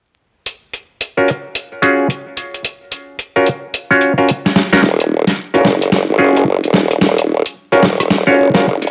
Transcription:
0.46 closed hi-hat
0.73 closed hi-hat
1.01 closed hi-hat
1.17 C#4 F4 F#4 A#4
1.28 closed hi-hat
1.55 closed hi-hat
1.82 C#4 F4 F#4 G#4, closed hi-hat
2.10 closed hi-hat
2.37 closed hi-hat
2.54 closed hi-hat
2.65 closed hi-hat
2.92 closed hi-hat
3.19 closed hi-hat
3.36 C#4 F4 F#4 A#4
3.46 closed hi-hat
3.74 closed hi-hat
3.91 C#4 F4 F#4 C#5
4.01 closed hi-hat
4.18 C#4 F4 F#4 A#4
4.29 closed hi-hat
4.46 snare
4.56 snare, closed hi-hat
4.73 C#4 F4 F#4 A#4, snare, closed hi-hat
4.82 D#1, snare
5.00 closed hi-hat
5.27 snare, closed hi-hat
5.54 D#1 C#4 F4 F#4 A#4, closed hi-hat
5.64 F#1, snare
5.82 closed hi-hat
5.92 snare
6.09 G#1
6.18 F#1 C#4 F4 F#4 G#4
6.36 closed hi-hat
6.63 D#1, closed hi-hat
6.74 snare
6.91 closed hi-hat
7.01 D#1, snare
7.18 closed hi-hat
7.46 closed hi-hat
7.72 D#1 C#4 F4 F#4 A#4, closed hi-hat
7.83 snare
8.00 cross-stick, closed hi-hat
8.10 snare
8.27 G#1 C#4 F4 F#4 C#5
8.37 F#1
8.54 C#4 F4 F#4 A#4, snare, closed hi-hat
8.82 D#1, closed hi-hat
8.87 closed hi-hat

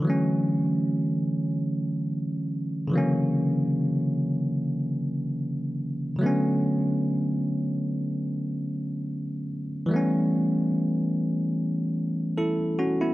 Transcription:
0.00 D3 E3
0.05 F#3 A3
0.10 C#4
2.88 C#3 D3
2.92 E3 F#3 A#3
2.98 C#4
6.16 C#3 F#3
6.21 D3 A3 B3
6.26 C#4
9.86 E3 G3
9.91 A3 B3
9.96 C#4
12.38 E4 A4
12.79 C#4 F#4
13.01 B3 E4

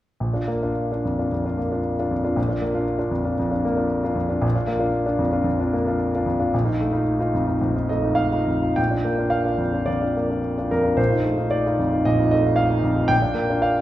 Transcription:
0.20 A#1
0.33 D4 F4
0.48 A#3
0.63 D4 F4
0.92 D4 F4
1.05 F2
1.19 D4 F4
1.32 F2
1.45 D4 F4
1.58 A#3
1.71 D4 F4
1.99 D4 F4
2.11 F2
2.24 D4 F4
2.36 A#1
2.48 D4 F4
2.62 A#3
2.74 D4 F4
2.98 D4 F4
3.11 F2
3.25 D4 F4
3.39 F2
3.51 D4 F4
3.65 A#3
3.77 D4 F4
4.03 D4 F4
4.15 F2
4.29 D4 F4
4.42 A#1
4.55 D4 F4
4.67 A#3
4.79 D4 F4
5.06 D4 F4
5.19 F2
5.32 D4 F4
5.44 F2
5.60 D4 F4
5.73 A#3
5.87 D4 F4
6.15 D4 F4
6.26 F2
6.39 D4 F4
6.54 A#1
6.64 D#4 F4
6.81 A3
6.93 D#4 F4
7.19 D#4 F4
7.34 F2
7.47 D#4 F4
7.61 A#1
7.76 D#4 F4
7.89 A3 D#5
8.01 D#4 F4
8.15 F5
8.32 D#4 F4
8.47 F2
8.62 D#4 F4
8.76 A#1 G5
8.91 D4 F4
9.04 A#3
9.18 D4 F4
9.30 F5
9.45 D4 F4
9.58 F2
9.73 D4 F4
9.86 F2 D5
10.02 D4 F4
10.17 A#3
10.30 D4 F4
10.58 D4 F4
10.71 F2 A#4
10.83 D4 F4
10.97 A#1 C5
11.10 D#4 F4
11.25 A3
11.38 D#4 F4
11.51 D5
11.66 D#4 F4
11.79 F2
11.93 D#4 F4
12.05 A#1 D#5
12.19 D#4 F4
12.31 A3 D#5
12.45 D#4 F4
12.56 F5
12.70 D#4 F4
12.83 F2
12.96 D#4 F4
13.08 A#1 G5
13.22 D4 F4
13.34 A#3
13.50 D4 F4
13.62 F5

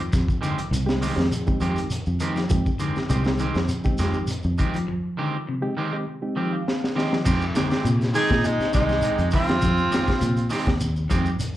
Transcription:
0.13 F2, muted clean electric guitar stroke, kick, snare, closed hi-hat, shekere
0.28 kick, shekere
0.41 D3 D#3 G#3 C4 G4, closed hi-hat, shekere
0.58 closed hi-hat, shekere
0.71 C2 C3, closed hi-hat, shekere
0.86 G#3 C4 D#4 G4, snare, shekere
1.01 D#3 G#3 C4 G4, open hi-hat, shekere
1.16 F2 G#3 C4 D#4 G4, snare, shekere
1.32 closed hi-hat, shekere
1.47 G#3 C4 D#4 G4, kick, shekere
1.61 F2 D#3 F3 G#3 C4 G4, closed hi-hat, shekere
1.76 closed hi-hat, shekere
1.90 closed hi-hat, shekere
2.06 F2, shekere
2.20 D#3 G#3 C4 G4, closed hi-hat, shekere
2.36 F3, snare, closed hi-hat, shekere
2.50 F2 F3 G#3 C4 D#4 G4, kick, closed hi-hat, shekere
2.66 kick, shekere
2.79 D3 D#3 G#3 C4 G4, closed hi-hat, shekere
2.96 D#4 G4, snare, shekere
3.09 C2 C3 D#3 G#3 C4 D#4 G4, closed hi-hat, shekere
3.24 snare, shekere
3.39 D#3 G#3 C4 G4, closed hi-hat, shekere
3.54 F2, snare, shekere
3.68 closed hi-hat, shekere
3.84 G#3 C4 D#4 G4, kick, shekere
3.98 F2 D#3 F3 G#3 C4 G4, snare, closed hi-hat, shekere
4.14 shekere
4.27 closed hi-hat, shekere
4.43 F2, shekere
4.58 D#3 G#3 C4 G4, kick, closed hi-hat, shekere
4.74 F3, closed hi-hat, shekere
4.88 F3
5.17 D3 D#3 G#3 C4 G4
5.49 C3
5.61 G#3 C4 D#4 G4
5.77 D#3 G#3 C4 G4
5.93 G#3 C4 D#4 G4
6.22 G#3 C4 D#4 G4
6.36 D#3 F3 C4 G4 G5
6.52 F5
6.68 F5, snare
6.84 snare
6.95 D#3 G#3 C4 G4 D#5, snare
7.12 F3, snare
7.25 F2 D#3 G#3 C4 G4, muted clean electric guitar stroke, kick, crash, shekere
7.42 shekere
7.55 D3 D#3 G#3 C4 G4, snare, closed hi-hat, shekere
7.70 G#3 C4 G4, snare, shekere
7.85 A#2 C3, closed hi-hat, shekere
8.01 snare, closed hi-hat, shekere
8.14 D#3 G#3 C4 D#4 G4 G#4, open hi-hat, shekere
8.28 A#2, kick, snare, shekere
8.44 G#3 D#4, closed hi-hat, shekere
8.60 muted fingered electric bass stroke, snare, shekere
8.73 C2 D#3 G#3 C4 D#4 G4, kick, snare, closed hi-hat, shekere
8.89 snare, shekere
9.02 D#3 G#3 C4 G4, closed hi-hat, shekere
9.18 F2, closed hi-hat, shekere
9.31 D#3 G#3 C4 G4, kick, open hi-hat, shekere
9.35 F4
9.48 F3, snare, closed hi-hat, shekere
9.61 F2 F3, kick, snare, closed hi-hat, shekere
9.78 shekere
9.91 D#3 G#3 C4 G4, snare, closed hi-hat, shekere
10.07 kick, snare, closed hi-hat, shekere
10.21 A#2 C3, closed hi-hat, shekere
10.37 closed hi-hat, shekere
10.50 D#3 G#3 C4 G4, muted clean electric guitar stroke, snare, open hi-hat, shekere
10.66 D#2, kick, snare, shekere
10.80 closed hi-hat, shekere
10.96 shekere
11.10 F2 D#3 F3 G#3 C4 G4, kick, snare, closed hi-hat, shekere
11.26 shekere
11.40 muted fingered electric bass stroke, closed hi-hat, shekere

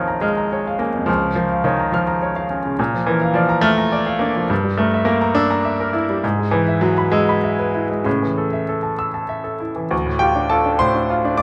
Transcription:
Already playing: A#1 F2 D#3 F3 A#4 C#5 F5
0.08 A#5
0.21 G#3 F6
0.37 A#5
0.52 C#5
0.67 F5
0.79 A#3 C#4
0.94 F2
1.06 C#2 F3
1.21 C#3
1.35 F3 A#4
1.51 F5
1.64 D#3 C#5
1.79 A#5
1.92 F3 F6
2.07 A#5
2.22 C#5
2.36 F5
2.50 C#4
2.65 C#3
2.79 A#2
2.94 F3
3.06 E3 A#4
3.21 F5
3.34 F3 D5
3.49 A#5
3.61 A3 F6
3.78 A#5
3.92 D5
4.06 F5
4.19 A#3 D4
4.36 F3
4.50 G2
4.64 G3
4.77 A3 A#4
4.94 E5
5.05 A#3 A#4
5.21 A#5
5.35 D4 E6
5.50 A#5
5.65 E5
5.80 A#4
5.93 E4
6.10 G3
6.24 G#2
6.39 G#3
6.51 E3 B4
6.68 E5
6.81 F#3 B4
6.98 B5
7.12 G#3 E6
7.29 B5
7.44 E5
7.59 B4
7.74 E4
7.90 G#3
8.04 A2 C#3
8.23 E3
8.38 A4
8.53 E5
8.69 A4
8.83 A5
8.99 E6
9.14 A5
9.29 E5
9.44 A4
9.60 E4
9.76 E3
9.91 D2
10.06 A2
10.19 F4 G4 G5
10.36 D4
10.50 F4 A4 A5
10.65 D4
10.79 A2 C5 C6
10.95 D4
11.10 F4
11.25 D4
11.37 D5 D6

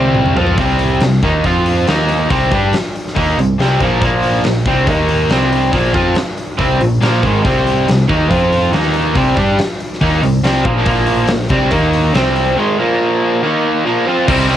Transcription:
Already playing: C2 C3 G3 C4
0.14 mid tom
0.26 mid tom
0.37 F2 F3 C4 F4, floor tom
0.47 floor tom
0.58 C2 C3 G3 C4, kick, open hi-hat
0.79 open hi-hat
1.01 C2 C3 G3, snare, open hi-hat
1.23 D#2 D#3 A#3 D#4, kick, open hi-hat
1.44 F2 F3 C4 F4, kick, open hi-hat
1.66 open hi-hat
1.87 D#2 D#3 A#3 D#4, snare, open hi-hat
2.08 open hi-hat
2.30 C2 C3 G3 C4, kick, open hi-hat
2.51 G2 G3 D4 G4, kick, open hi-hat
2.73 snare, open hi-hat
2.96 open hi-hat
3.07 snare
3.15 D#2 D#3 A#3 D#4, kick, open hi-hat
3.37 C2 C3 G3, open hi-hat
3.58 C2 C3 G3 C4, snare, open hi-hat
3.80 A#1 A#2 F3 A#3, kick, open hi-hat
4.00 A#1 A#2 F3 A#3, kick, open hi-hat
4.04 A#2 F3
4.23 open hi-hat
4.44 A#1 A#2 F3, snare, open hi-hat
4.66 C2 C3 G3 C4, kick, open hi-hat
4.87 D#2 D#3 A#3 D#4, kick, open hi-hat
5.09 open hi-hat
5.29 C2 C3 G3 C4, snare, open hi-hat
5.53 open hi-hat
5.73 A#1 A#2 F3 A#3, kick, open hi-hat
5.94 F2 F3 C4 F4, kick, open hi-hat
6.16 snare, open hi-hat
6.38 open hi-hat
6.59 C2 C3 G3 C4, kick, open hi-hat
6.80 A#1 A#2 F3, open hi-hat
7.01 A#1 A#2 F3 A#3, snare, open hi-hat
7.23 G#1 G#2 D#3 G#3, kick, open hi-hat
7.43 C2 C3 G3 C4, kick, open hi-hat
7.67 open hi-hat
7.87 C2 C3 G3, snare, open hi-hat
8.09 D#2 D#3 A#3 D#4, kick, open hi-hat
8.30 F2 F3 C4 F4, kick, open hi-hat
8.52 open hi-hat
8.73 D#2 D#3 A#3 D#4, snare, open hi-hat
8.93 open hi-hat
9.15 C2 C3 G3 C4, kick, open hi-hat
9.37 G2 G3 D4 G4, kick, open hi-hat
9.59 snare, open hi-hat
9.80 open hi-hat
9.93 snare
10.01 D#2 D#3 A#3 D#4, kick, open hi-hat
10.22 C2 C3 G3, open hi-hat
10.43 C2 C3 G3 C4, snare, open hi-hat
10.64 A#1 A#2 F3 A#3, kick, open hi-hat
10.86 A#1 A#2 F3 A#3, kick, open hi-hat
11.07 open hi-hat
11.28 A#1 A#2 F3, snare, open hi-hat
11.49 C2 C3 G3 C4, kick, open hi-hat
11.71 D#2 D#3 A#3 D#4, kick, open hi-hat
11.94 open hi-hat
12.14 C2 C3 G3 C4, snare, open hi-hat
12.36 open hi-hat
12.57 G#2 D#3 G#3
12.79 A#2 F3 A#3
13.42 D#3 A#3 D#4
13.85 A#2 F3 A#3
14.06 F3 C4 F4
14.27 C2 C3 G3 C4, kick, crash
14.31 C4 D#4
14.48 C3 G3 C4, crash

